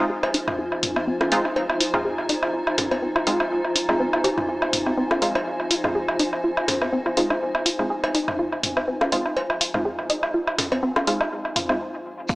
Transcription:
Already playing: synth drone D#4, ambient pad F4 C5 G#5
0.10 synth arpeggio sound G#4
0.23 cowbell, low woodblock
0.34 synth arpeggio sound D#4, open hi-hat
0.48 mid tom, low woodblock
0.59 synth arpeggio sound F4
0.72 low woodblock
0.83 mid tom, open hi-hat
0.96 synth arpeggio sound C4, low woodblock
1.07 synth arpeggio sound C4
1.21 synth arpeggio sound F4, high bongo, low woodblock
1.32 synth stab G#3 C4 D#4 F4, open hi-hat
1.45 synth arpeggio sound D#4, low woodblock
1.56 cowbell
1.70 low woodblock
1.80 synth arpeggio sound F4, open hi-hat
1.94 synth stab G#3 C4 D#4 F4, mid tom, low woodblock
2.05 synth arpeggio sound G#4
2.18 low woodblock
2.29 synth arpeggio sound D#4, open hi-hat
2.43 low woodblock
2.54 synth arpeggio sound F4
2.67 low woodblock
2.78 mid tom, open hi-hat, high bongo
2.91 synth arpeggio sound C4, cowbell, low woodblock
3.02 synth arpeggio sound C4
3.16 synth arpeggio sound F4, low woodblock
3.27 synth stab G#3 C4 D#4 F4, open hi-hat
3.40 synth arpeggio sound D#4, low woodblock
3.65 low woodblock
3.76 synth arpeggio sound D#4, open hi-hat
3.89 synth stab G#3 C4 D#4 F4, low woodblock
4.00 synth arpeggio sound C4
4.13 synth arpeggio sound F4, low woodblock
4.24 synth arpeggio sound G4, open hi-hat, cowbell
4.38 synth arpeggio sound F4, mid tom, low woodblock
4.49 synth arpeggio sound F4
4.62 low woodblock
4.73 mid tom, open hi-hat
4.86 synth arpeggio sound C4, low woodblock
4.98 synth arpeggio sound C4
5.11 synth arpeggio sound F4, high bongo, low woodblock
5.22 synth stab G#3 C4 D#4 F4, open hi-hat
5.35 synth arpeggio sound D#4, cowbell, low woodblock
5.60 low woodblock
5.71 synth arpeggio sound F4, open hi-hat
5.84 synth stab G#3 C4 D#4 F4, mid tom, low woodblock
5.95 synth arpeggio sound G#4
6.08 low woodblock
6.19 synth arpeggio sound D#4, open hi-hat
6.33 low woodblock
6.44 synth arpeggio sound F4
6.57 low woodblock
6.68 mid tom, open hi-hat, cowbell, high bongo
6.82 synth arpeggio sound C4, low woodblock
6.93 synth arpeggio sound C4
7.06 synth arpeggio sound F4, low woodblock
7.17 synth stab G#3 C4 D#4 F4, open hi-hat
7.30 synth arpeggio sound D#4, low woodblock
7.55 low woodblock
7.66 synth arpeggio sound F4, open hi-hat
7.79 synth stab G#3 C4 D#4 F4, low woodblock
7.90 synth arpeggio sound G#4
8.04 cowbell, low woodblock
8.15 synth arpeggio sound D#4, open hi-hat
8.28 mid tom, low woodblock
8.39 synth arpeggio sound F4
8.52 low woodblock
8.63 mid tom, open hi-hat
8.77 synth arpeggio sound C4, low woodblock
8.88 synth arpeggio sound C4
9.01 synth arpeggio sound F4, high bongo, low woodblock
9.12 synth stab G#3 C4 D#4 F4, open hi-hat
9.25 synth arpeggio sound D#4, low woodblock
9.37 cowbell
9.50 low woodblock
9.61 synth arpeggio sound F4, open hi-hat
9.74 synth stab G#3 C4 D#4 F4, mid tom, low woodblock
9.85 synth arpeggio sound G#4
9.99 low woodblock
10.10 synth arpeggio sound D#4, open hi-hat
10.23 low woodblock
10.34 synth arpeggio sound F4
10.47 low woodblock
10.58 mid tom, open hi-hat, high bongo
10.72 synth arpeggio sound C4, cowbell, low woodblock
10.83 synth arpeggio sound C4
10.96 synth arpeggio sound F4, high bongo, low woodblock
11.07 synth stab G#3 C4 D#4 F4, open hi-hat
11.21 synth arpeggio sound D#4, low woodblock
11.45 low woodblock
11.56 synth arpeggio sound F4, mid tom, open hi-hat
11.69 synth stab G#3 C4 D#4 F4, low woodblock
12.29 synth arpeggio sound F4, kick, closed hi-hat, shekere

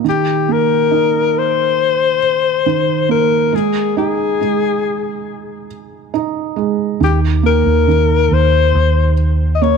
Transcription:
0.04 felt piano D#3
0.09 alto saxophone G4
0.48 felt piano A#3, alto saxophone A#4
0.91 felt piano D#4
1.38 alto saxophone C5
2.66 felt piano D#3
3.09 felt piano A#3, alto saxophone A#4
3.52 felt piano G#3, alto saxophone G#4
3.97 felt piano D#4, alto saxophone G#4
4.41 felt piano G#3
6.14 felt piano D#4
6.56 felt piano G#3
7.00 fingered electric bass D#2, felt piano D#3, alto saxophone G4
7.43 felt piano A#3, alto saxophone A#4
7.66 fingered electric bass D#2
7.88 felt piano D#3
8.32 fingered electric bass D#2, alto saxophone C5
8.75 fingered electric bass D#2
9.55 alto saxophone D#5
9.62 felt piano A#3, alto saxophone C#5

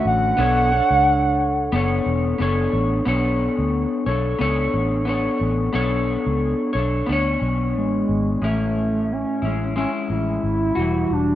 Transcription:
Already playing: clean electric guitar D3 A3 C#4 F#4
0.05 fingered electric bass A1, soft synth lead F#5
0.37 fingered electric bass B1, clean electric guitar B3 D4 A4 C#5
0.72 clean electric guitar D4 A4 C#5
0.91 fingered electric bass C#2
1.72 fingered electric bass F#1, clean electric guitar B3 D4 A4 C#5
2.06 fingered electric bass E1
2.38 fingered electric bass F#1, clean electric guitar B3 D4 A4 C#5
2.73 fingered electric bass A1
3.05 fingered electric bass B1, clean electric guitar B3 D4 A4 C#5
3.59 fingered electric bass D2
4.06 fingered electric bass B1, clean electric guitar D4 A4 C#5
4.38 fingered electric bass C#2, clean electric guitar B3 D4 A4 C#5
4.74 fingered electric bass A1
5.05 clean electric guitar B3 D4 A4
5.09 clean electric guitar C#5
5.41 fingered electric bass A1
5.73 fingered electric bass B1, clean electric guitar B3 D4 A4 C#5
6.27 fingered electric bass C#2
6.73 fingered electric bass B1, clean electric guitar A4 C#5
6.77 clean electric guitar D4
7.07 fingered electric bass D2, clean electric guitar B3 D4
7.13 clean electric guitar C#5
7.42 fingered electric bass B1
7.75 fingered electric bass A1, soft synth lead G#3
8.09 fingered electric bass G#1
8.42 fingered electric bass A1, clean electric guitar A2 C#4 E4, soft synth lead A3
9.12 soft synth lead C#4
9.42 fingered electric bass A1, clean electric guitar C#4 E4
9.46 clean electric guitar G#3
9.76 clean electric guitar G#3 C#4 E4, soft synth lead C#4
10.10 fingered electric bass A1, soft synth lead E4
10.44 fingered electric bass G#1
10.75 fingered electric bass E1, clean electric guitar F#4
10.80 clean electric guitar E3 G3
11.11 fingered electric bass E1, soft synth lead D4

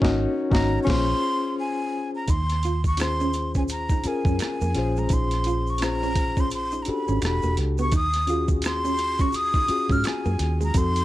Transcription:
Already playing: reed electric piano C#4 D#4 F#4 A#4
0.02 fingered electric bass G#1, reed electric piano C#4 D#4 F#4 C#5, kick, snare
0.50 fingered electric bass G#1, reed electric piano C#4 D#4 F#4 C#5, flute A#5, kick
0.55 snare
0.83 reed electric piano C#4 F4, flute C#6, kick, crash
0.87 fingered electric bass A#1, reed electric piano G#4 C5, flute C6, snare
1.59 flute G#5
2.15 flute A#5
2.28 fingered electric bass D#2, hollow-body jazz guitar D#4, flute C6, kick, closed hi-hat, shaker
2.49 cross-stick, closed hi-hat, shaker
2.63 hollow-body jazz guitar F4, closed hi-hat, shaker
2.84 flute C#6, kick, shaker
2.97 reed electric piano C#4 F4 G#4 C5, finger snap, closed hi-hat, shaker
3.01 flute C6, cross-stick
3.20 hollow-body jazz guitar C#4, shaker
3.33 muted hollow-body jazz guitar stroke, closed hi-hat, shaker
3.54 hollow-body jazz guitar C#4, flute G#5, kick, shaker
3.68 flute A#5, closed hi-hat, shaker
3.89 hollow-body jazz guitar D#4, kick, shaker
4.04 reed electric piano C#4 F4 G#4, flute G#5, muted fingered electric bass stroke, muted hollow-body jazz guitar stroke, closed hi-hat, shaker
4.08 reed electric piano A#4
4.25 fingered electric bass F#2, hollow-body jazz guitar C#4, kick, shaker
4.39 flute G#5, finger snap, cross-stick, closed hi-hat, shaker
4.61 fingered electric bass F2, hollow-body jazz guitar A#3, shaker
4.75 fingered electric bass A#1, reed electric piano C#4 F4 G#4 C5, muted hollow-body jazz guitar stroke, cross-stick, closed hi-hat
4.96 hollow-body jazz guitar G#3, flute A#5, shaker
5.09 fingered electric bass A#1, hollow-body jazz guitar D#4, kick, closed hi-hat, shaker
5.13 flute C6
5.31 cross-stick, closed hi-hat, shaker
5.44 hollow-body jazz guitar F4, closed hi-hat, shaker
5.67 flute C#6, shaker
5.78 reed electric piano C#4 F4, finger snap, closed hi-hat, shaker
5.82 reed electric piano G#4 C5, flute A#5, cross-stick
6.03 hollow-body jazz guitar C#4, shaker
6.16 muted hollow-body jazz guitar stroke, kick, closed hi-hat, shaker
6.37 hollow-body jazz guitar C#4, flute C6, kick, shaker
6.51 flute C6, closed hi-hat, shaker
6.72 hollow-body jazz guitar D#4, shaker
6.82 reed electric piano D4, flute A#5, closed hi-hat, shaker
6.87 reed electric piano F#4 G4 A4, flute B5, muted fingered electric bass stroke, muted hollow-body jazz guitar stroke
7.08 fingered electric bass G#1, hollow-body jazz guitar C#4, shaker
7.21 fingered electric bass E1, reed electric piano D4 F#4 G4 A4, finger snap, closed hi-hat, shaker
7.25 flute B5, cross-stick
7.42 fingered electric bass E1, hollow-body jazz guitar A#3, shaker
7.57 fingered electric bass C#2, muted hollow-body jazz guitar stroke, cross-stick, closed hi-hat
7.78 hollow-body jazz guitar B3, flute C#6, shaker
7.92 fingered electric bass D#2, hollow-body jazz guitar D#4, kick, closed hi-hat, shaker
7.96 flute D#6
8.13 cross-stick, closed hi-hat, shaker
8.27 reed electric piano C#4 F4 F#4 G#4, hollow-body jazz guitar F4, closed hi-hat, shaker
8.48 kick, shaker
8.62 flute C6, finger snap, closed hi-hat, shaker
8.66 cross-stick
8.85 hollow-body jazz guitar C#4, shaker
8.97 muted hollow-body jazz guitar stroke, closed hi-hat, shaker
9.19 hollow-body jazz guitar C#4, flute C#6, kick, shaker
9.32 flute D#6, closed hi-hat, shaker
9.54 hollow-body jazz guitar D#4, kick, shaker
9.68 reed electric piano C#4 F4 F#4 G#4, muted fingered electric bass stroke, muted hollow-body jazz guitar stroke, closed hi-hat, shaker
9.89 fingered electric bass G#2, hollow-body jazz guitar C#4, flute F6, kick, shaker
10.04 flute G#5, finger snap, cross-stick, closed hi-hat, shaker
10.26 fingered electric bass F#2, hollow-body jazz guitar A#3, shaker
10.39 fingered electric bass D#2, muted hollow-body jazz guitar stroke, cross-stick, closed hi-hat
10.61 hollow-body jazz guitar G#3, flute A#5, shaker
10.74 fingered electric bass F2, reed electric piano C4 D#4 F#4 A4, hollow-body jazz guitar D#4, flute C6, kick, closed hi-hat, shaker
10.96 closed hi-hat, shaker

